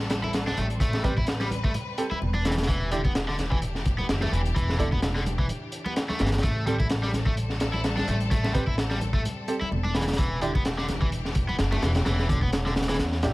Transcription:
Already playing: A1 G3 C4 A4
0.10 snare, closed hi-hat, muted conga
0.24 E4, high conga
0.33 snare, closed hi-hat
0.47 D4, snare, high conga
0.57 A1 A3, closed hi-hat, muted conga
0.70 closed hi-hat
0.80 A3 B4, kick, closed hi-hat
0.93 snare, muted conga
1.04 G3 C4 G4 B4, kick, closed hi-hat, low conga
1.17 E4, kick
1.26 snare, closed hi-hat
1.40 G3, snare, muted conga
1.51 closed hi-hat, high conga
1.64 A3, kick
1.74 closed hi-hat, muted conga
1.98 C4 G4 A4, closed hi-hat
2.11 E4, muted upright bass stroke, high conga
2.22 E1, muted conga
2.34 D4, high conga
2.45 E3 D4 G4, snare, closed hi-hat
2.51 snare, closed hi-hat
2.58 snare, closed hi-hat, muted conga
2.63 snare, closed hi-hat
2.68 E3, kick, closed hi-hat
2.91 D3 D4 E4 G4, closed hi-hat, low conga
3.05 B3, kick, muted conga
3.15 snare, closed hi-hat
3.28 D3, snare
3.38 snare, closed hi-hat, muted conga, high conga
3.51 E3, kick
3.62 closed hi-hat
3.75 snare
3.85 kick, closed hi-hat, muted conga
3.99 B3, high conga
4.09 F#1, snare, closed hi-hat
4.21 A3, snare, muted conga, high conga
4.32 E1 E3, closed hi-hat
4.45 closed hi-hat
4.56 E1 E3, kick, closed hi-hat
4.69 snare, muted conga
4.79 D3 D4 E4 A4, kick, closed hi-hat, low conga
4.92 B3, kick, high conga
5.02 snare, closed hi-hat, muted conga
5.16 D3, snare
5.26 closed hi-hat, high conga
5.38 E3, kick
5.49 closed hi-hat, muted conga
5.72 closed hi-hat
5.86 B3, muted conga, high conga
5.96 snare, closed hi-hat
6.09 A3, snare, high conga
6.19 G1 E3, snare, closed hi-hat
6.26 snare, closed hi-hat
6.32 snare, closed hi-hat, muted conga
6.38 snare, closed hi-hat
6.43 A1 G3 A3 C4 A4, kick, closed hi-hat, muted conga
6.67 G3 C4 G4 A4, closed hi-hat, low conga
6.80 E4, kick, muted conga
6.89 snare, closed hi-hat
7.03 G3, snare
7.13 snare, closed hi-hat, high conga
7.26 A3, kick, muted conga
7.37 closed hi-hat
7.50 snare
7.60 snare, closed hi-hat, muted conga
7.73 E4, high conga
7.84 snare, closed hi-hat
7.97 D4, snare, high conga
8.07 A1 A3, closed hi-hat, muted conga
8.20 closed hi-hat
8.31 A3, kick, closed hi-hat
8.44 snare, muted conga
8.54 G3 C4 G4 B4, kick, closed hi-hat, low conga
8.67 E4, kick
8.78 snare, closed hi-hat
8.91 G3, snare, muted conga
9.01 closed hi-hat, high conga
9.13 A3, kick
9.25 closed hi-hat, muted conga
9.48 C4 G4 A4, closed hi-hat
9.61 E4, muted upright bass stroke, high conga
9.71 E1, muted conga
9.84 D4, high conga
9.95 E3 D4 G4, snare, closed hi-hat
10.01 snare, closed hi-hat
10.08 snare, closed hi-hat, muted conga
10.13 snare, closed hi-hat
10.18 E3, kick, closed hi-hat
10.41 D3 D4 E4 G4, closed hi-hat, low conga
10.55 B3, kick, muted conga
10.65 snare, closed hi-hat
10.78 D3, snare
10.89 snare, closed hi-hat, muted conga, high conga
11.02 E3, kick
11.12 closed hi-hat
11.25 snare
11.35 kick, closed hi-hat, muted conga
11.49 B3, high conga
11.59 F#1, snare, closed hi-hat
11.72 A3, snare, muted conga, high conga
11.82 E1 E3 C#4, snare, closed hi-hat
11.95 snare, closed hi-hat
12.06 E1 E3, snare, closed hi-hat
12.19 snare, muted conga
12.29 D3, kick, closed hi-hat, low conga
12.41 B3, kick, high conga
12.52 snare, closed hi-hat, muted conga
12.66 D3, snare
12.76 snare, closed hi-hat, high conga
12.82 snare, closed hi-hat
12.89 E3, snare, closed hi-hat
12.94 snare, closed hi-hat
12.99 E2, snare, closed hi-hat, muted conga
13.12 snare
13.23 B1 D4 E4 G4, snare, closed hi-hat

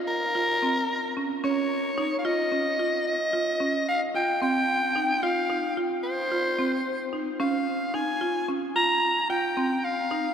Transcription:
Already playing: F4
0.08 A#4
0.35 F4
0.62 C4
1.17 C#4
1.44 C#4 C#5
1.98 D#4
2.18 F5
2.25 F4 D#5
2.52 C#4
2.79 F4
3.07 D#5
3.33 F4
3.60 C#4
3.88 F5
4.15 F4 G5
4.42 C4 G5
4.96 D#4
5.23 F4 F5
5.50 D#4
5.77 F4
6.04 C5
6.31 F4
6.59 C4
7.13 D#4
7.40 C#4 F5
7.94 D#4 G#5
8.21 F4
8.48 C#4
8.76 F4 A#5
9.30 F4 G5
9.57 C4
9.84 F5
10.11 D#4

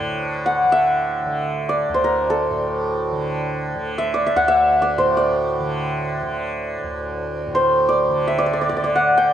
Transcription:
Already playing: D2 D3 D4 C5 D5
0.00 A2
0.46 F#5
0.64 D3
0.72 E5
1.26 D3
1.69 D5
1.89 D2
1.94 C5
2.04 A#4
2.30 A4
2.50 A2
3.12 D3
3.75 D3
3.98 E5
4.14 D5
4.26 E5
4.36 D2 F#5
4.48 E5
4.82 D5
4.98 A2 C5
5.17 D5
5.60 D3
6.22 D3
6.83 D2
7.47 A2
7.55 C5
7.89 D5
8.09 D3
8.27 E5
8.38 D5
8.46 D5
8.53 D5
8.61 D5
8.69 D3 D5
8.77 D5
8.84 D5
8.95 F#5
9.18 G5

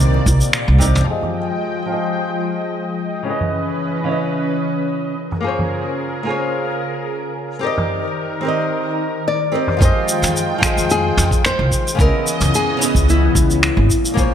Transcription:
Already playing: C2 A#2 C3 D#3 A#3 C4 D#4 A#4 D5
0.00 high conga, shaker
0.14 high bongo
0.26 C2, kick, high bongo, high conga, shaker
0.41 shaker
0.53 finger snap, shaker
0.68 C2
0.79 C3 C4 D#4 A#4 D5, kick, high bongo, high conga, shaker
0.95 mid tom, shaker
1.04 F3 G#3 F4 G4 G5
1.08 F3 G#4 D#5
1.23 mid tom
1.86 F3 F4 G4
1.92 G#4 D#5
3.23 C#3 E3 C#4 E4 B4
3.28 B4 D#5
3.41 mid tom
4.04 C#3 C#4 E4
4.10 B4 D#5
5.17 C#3 G#4 A#4
5.32 mid tom
5.41 A#3 F4 G#4
5.46 C5 C#5
5.59 mid tom
6.23 A#3 F4 G#4
6.29 C5 C#5
7.59 C4 G4 A#4
7.63 D#3 D#4 A#4 D5 D#5
7.78 mid tom
8.41 C4 G4 A#4
8.47 D5 D#5
9.28 D5
9.52 C4 G4 A#4 D5 D#5
9.67 mid tom
9.77 F2 F3 F4 G4 G5, kick
9.81 D#3 G#3 F4 G#4 C5 D#5, shaker
10.08 shaker
10.22 F2, mid tom, shaker
10.36 shaker
10.58 F3 F4 G5, kick
10.63 G#4 D#5, finger snap, shaker
10.77 F2, shaker
10.90 G#4, shaker
11.17 F2, mid tom, shaker
11.31 kick, shaker
11.45 C5, finger snap, shaker
11.59 C2
11.71 kick, shaker
11.88 shaker
11.95 C#2 C#3 B3 C#4 E4, kick
11.99 C#3 E3 B3 A#4 D#5, shaker
12.27 shaker
12.40 C#2, mid tom, shaker
12.54 G#4, shaker
12.77 C#3 C#4 E4
12.82 B4 D#5, shaker
12.95 C#2, kick, shaker
13.09 E4, shaker
13.35 C#2, kick, shaker
13.50 shaker
13.63 finger snap, shaker
13.77 G#1
13.90 A#2 G#3 A#3 C#4, kick, shaker
14.05 shaker
14.14 A#1 A#3 F4 G#4, kick, shaker
14.19 C5 C#5

